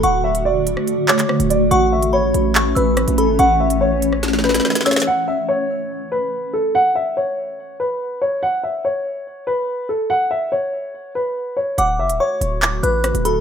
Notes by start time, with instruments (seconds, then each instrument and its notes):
Already playing: ambient pad D3 A3 F#4
0.03 808-style bass D1, grand piano F#5, synth bell C#6, closed hi-hat
0.24 grand piano E5
0.35 closed hi-hat
0.45 808-style bass E1, grand piano D5
0.61 808-style bass D1
0.67 closed hi-hat
0.77 cross-stick
0.88 closed hi-hat
1.08 grand piano C#5, synth bell D6, clap
1.19 clap, closed hi-hat
1.29 cross-stick
1.40 808-style bass D1, closed hi-hat
1.50 grand piano D5, closed hi-hat
1.71 808-style bass A1, ambient pad E3 A3 C#4, grand piano F#5, synth bell C#6, closed hi-hat
1.92 grand piano E5
2.03 closed hi-hat
2.13 808-style bass G#1, grand piano C#5, synth bell B5
2.24 808-style bass A1
2.34 808-style bass A1, closed hi-hat
2.55 synth bell C#6, clap
2.75 808-style bass A1, grand piano B4, synth bell E6, closed hi-hat
2.97 cross-stick, closed hi-hat
3.08 808-style bass A1, closed hi-hat
3.18 grand piano A4, synth bell B5, closed hi-hat
3.29 808-style bass G#1
3.39 808-style bass A1, grand piano F#5, synth bell C#6, closed hi-hat
3.60 grand piano E5
3.70 closed hi-hat
3.81 grand piano C#5
4.02 closed hi-hat
4.13 cross-stick
4.23 snare, closed hi-hat
4.28 snare
4.33 snare
4.39 snare
4.44 grand piano B4, snare
4.49 snare
4.54 snare, closed hi-hat
4.60 snare
4.65 snare
4.70 snare
4.75 snare, closed hi-hat
4.81 snare
4.85 grand piano C#5, synth bell E6, snare, closed hi-hat
4.91 snare, closed hi-hat
4.96 snare, closed hi-hat
5.02 snare
5.07 grand piano F#5
5.28 grand piano E5
5.49 grand piano C#5
6.12 grand piano B4
6.53 grand piano A4
6.75 grand piano F#5
6.95 grand piano E5
7.17 grand piano C#5
7.80 grand piano B4
8.22 grand piano C#5
8.43 grand piano F#5
8.63 grand piano E5
8.85 grand piano C#5
9.47 grand piano B4
9.89 grand piano A4
10.10 grand piano F#5
10.31 grand piano E5
10.52 grand piano C#5
11.15 grand piano B4
11.57 grand piano C#5
11.78 808-style bass D1, ambient pad D3 A3 F#4, grand piano F#5, synth bell D6, closed hi-hat
11.99 808-style bass F#1, grand piano E5
12.10 808-style bass D1, closed hi-hat
12.20 grand piano C#5, synth bell C#6
12.41 808-style bass D1, closed hi-hat
12.62 synth bell D6, clap
12.83 808-style bass A1, grand piano B4, synth bell F#6, closed hi-hat
13.04 cross-stick, closed hi-hat
13.15 808-style bass D1, closed hi-hat
13.25 grand piano A4, synth bell B5, closed hi-hat